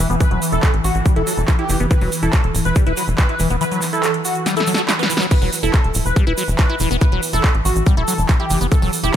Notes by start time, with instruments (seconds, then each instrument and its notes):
Already playing: synth drone E3
0.10 analog synth bass E1, acid bass B3, closed hi-hat, shaker
0.20 acid bass E3, analog synth lead B4, kick, closed hi-hat, shaker
0.31 analog synth bass E1, acid bass F#3, closed hi-hat
0.42 open hi-hat, shaker
0.52 analog synth bass E1, acid bass E4, analog synth lead A4, closed hi-hat, shaker
0.63 kick, clap, closed hi-hat, shaker
0.74 analog synth bass A1, closed hi-hat
0.84 analog synth bass A1, analog synth lead F#4, open hi-hat, shaker
0.95 analog synth bass A1, closed hi-hat, shaker
1.06 acid bass G3, kick, closed hi-hat, shaker
1.16 analog synth bass E1, acid bass E4, analog synth lead A4, closed hi-hat
1.27 acid bass F#3, open hi-hat, shaker
1.38 analog synth bass E1, closed hi-hat, shaker
1.48 acid bass E3, kick, clap, closed hi-hat, shaker
1.59 acid bass E4, analog synth lead G4, closed hi-hat
1.69 analog synth bass F#1, acid bass E3, open hi-hat, shaker
1.80 analog synth bass F#1, acid bass B3, closed hi-hat, shaker
1.91 acid bass E3, analog synth lead B4, kick, closed hi-hat, shaker
2.01 analog synth bass E1, acid bass F#3, open hi-hat
2.12 open hi-hat, shaker
2.23 analog synth bass E1, acid bass E4, analog synth lead A4, closed hi-hat, shaker
2.33 kick, clap, closed hi-hat, shaker
2.44 analog synth bass E1, closed hi-hat
2.55 analog synth bass D1, open hi-hat, shaker
2.65 analog synth bass E1, analog synth lead B4, closed hi-hat, shaker
2.76 acid bass G3, kick, closed hi-hat, shaker
2.86 analog synth bass E1, acid bass E4, analog synth lead B4, closed hi-hat
2.97 acid bass F#3, open hi-hat, shaker
3.08 analog synth bass E1, closed hi-hat, shaker
3.18 acid bass E3, analog synth lead B4, kick, clap, closed hi-hat, shaker
3.29 acid bass E4, closed hi-hat
3.39 analog synth bass E1, acid bass E3, open hi-hat, shaker
3.50 analog synth bass E1, acid bass B3, closed hi-hat, shaker
3.61 acid bass E3, analog synth lead B4, closed hi-hat, shaker
3.72 acid bass F#3, closed hi-hat, shaker
3.82 clap, open hi-hat, shaker
3.93 acid bass E4, analog synth lead A4, shaker
4.04 clap, closed hi-hat, shaker
4.14 closed hi-hat
4.25 analog synth lead F#4, open hi-hat, shaker
4.35 closed hi-hat, shaker
4.46 acid bass G3, snare, closed hi-hat, shaker
4.57 acid bass E4, analog synth lead A4, snare, closed hi-hat, shaker
4.67 acid bass F#3, open hi-hat, shaker
4.74 acid bass F#4, snare, closed hi-hat, shaker
4.89 acid bass E4, snare, clap, closed hi-hat, shaker
4.99 acid bass B3, analog synth lead B4, snare, closed hi-hat, shaker
5.10 acid bass E3, open hi-hat, shaker
5.17 acid bass F#3, snare, closed hi-hat, shaker
5.31 synth drone E3, acid bass E3, analog synth lead B4, kick, closed hi-hat, crash, shaker
5.42 analog synth bass E1, acid bass F#3, open hi-hat
5.52 open hi-hat, shaker
5.63 analog synth bass E1, acid bass E4, analog synth lead A4, closed hi-hat, shaker
5.73 kick, clap, closed hi-hat, shaker
5.84 analog synth bass E1, closed hi-hat
5.94 analog synth bass D1, open hi-hat, shaker
6.06 analog synth bass E1, analog synth lead B4, closed hi-hat, shaker
6.16 acid bass G3, kick, closed hi-hat, shaker
6.27 analog synth bass E1, acid bass E4, analog synth lead B4, closed hi-hat
6.38 acid bass F#3, open hi-hat, shaker
6.48 analog synth bass E1, closed hi-hat, shaker
6.59 acid bass E3, analog synth lead B4, kick, clap, closed hi-hat, shaker
6.69 acid bass E4, closed hi-hat
6.79 analog synth bass E1, acid bass E3, open hi-hat, shaker
6.91 analog synth bass E1, acid bass B3, closed hi-hat, shaker
7.01 acid bass E3, analog synth lead B4, kick, closed hi-hat, shaker
7.12 analog synth bass E1, acid bass F#3, closed hi-hat
7.23 open hi-hat, shaker
7.33 analog synth bass E1, acid bass E4, analog synth lead A4, closed hi-hat, shaker
7.44 kick, clap, closed hi-hat, shaker
7.55 analog synth bass A1, closed hi-hat
7.65 analog synth bass A1, analog synth lead F#4, open hi-hat, shaker
7.76 analog synth bass A1, closed hi-hat, shaker
7.86 acid bass G3, kick, closed hi-hat, shaker
7.97 analog synth bass E1, acid bass E4, analog synth lead A4, closed hi-hat
8.08 acid bass F#3, open hi-hat, shaker
8.18 analog synth bass E1, closed hi-hat, shaker
8.29 acid bass E3, kick, clap, closed hi-hat, shaker
8.40 acid bass E4, analog synth lead G4, closed hi-hat
8.50 analog synth bass F#1, acid bass E3, open hi-hat, shaker
8.61 analog synth bass F#1, acid bass B3, closed hi-hat, shaker
8.72 acid bass E3, analog synth lead A4, kick, closed hi-hat, shaker
8.82 analog synth bass E1, acid bass F#3, open hi-hat
8.93 open hi-hat, shaker
9.03 analog synth bass E1, acid bass E4, analog synth lead G4, closed hi-hat, shaker